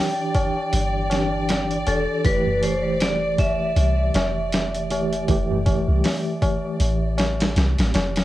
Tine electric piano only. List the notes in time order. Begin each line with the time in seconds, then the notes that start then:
Already playing: E3 D4 G4
1.10 E3 D4 G4
2.24 E3 A3 G4
4.90 E3 A3 G4
5.28 E3 A3 G4